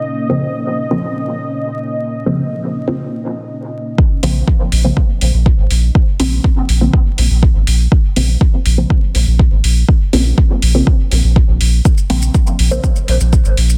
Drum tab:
HH |----------------|----------------|--o---o---o---o-|--o---o---o---o-|
SH |----------------|----------------|----------------|----------------|
BD |----------------|----------------|o---o---o---o---|o---o---o---o---|

HH |--o---o---o---o-|--o---o---o---o-|--o---o---o---o-|
SH |----------------|----------------|xx-xxx-xxx-xxx-x|
BD |o---o---o---o---|o---o---o---o---|o---o---o---o---|